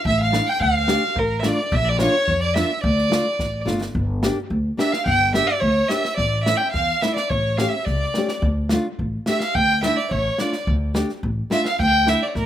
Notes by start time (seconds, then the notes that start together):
0.05 A1 E5, kick
0.18 F5
0.23 F5
0.32 A3 D4 E4, snare
0.46 G5
0.59 D2 F5, kick
0.66 E5
0.75 F5
0.87 A3 D4 G4, snare
1.15 A1 A#4, kick
1.39 E5, snare
1.44 A3 D4 F4 D5
1.48 D5
1.72 A#1 E5, kick
1.84 D5
1.89 D5
1.98 A#3 D4 F4 C#5, snare
2.28 F2, kick
2.41 D5
2.54 A#3 D4 F4 E5, snare
2.81 D2 D5, kick
2.98 snare
3.10 A3 D4 F4, snare
3.39 A1, kick, snare
3.65 G1 A3 D4 F4, snare
3.81 snare
3.95 G1, kick
4.23 A#3 D4 G4, snare
4.50 D2, kick
4.77 A#3 D4 G4 E5, snare
4.92 F5, snare
5.05 G1 G5, kick
5.34 A#3 D4 G4 E5, snare
5.47 D5, snare
5.60 D2 C#5, kick
5.88 A#3 D4 G4 E5, snare
6.05 snare
6.16 A1 D5, kick, snare
6.43 A3 E5, snare
6.47 C#4 E4 E5
6.55 D5 G5
6.63 E5
6.72 E2 F5, kick, snare
7.01 A3 C#4 E4 E5, snare
7.15 D5, snare
7.29 A1 C#5, kick
7.57 A3 C#4 G4 F5, snare
7.68 E5
7.72 E5
7.85 C#2 D5, kick, snare
8.14 A3 C#4 G4, snare
8.28 D5, snare
8.42 D2, kick
8.69 A3 D4 F4, snare
8.99 A1, kick
9.26 A3 D4 G4 E5, snare
9.40 F5, snare
9.54 D2 G5, kick
9.83 A3 D4 E4 E5, snare
9.96 D5, snare
10.10 A1 C#5, kick
10.38 A3 D4 F4 D5, snare
10.53 snare
10.67 D2, kick
10.94 A3 D4 G4, snare
11.09 snare
11.23 A1, kick
11.50 A3 D4 F4 E5, snare
11.65 F5, snare
11.79 D2 G5, kick
11.87 F5
11.94 G5
12.06 A3 D4 E4 E5, snare
12.22 D5
12.28 C#5
12.35 A1 A#4 D5, kick, snare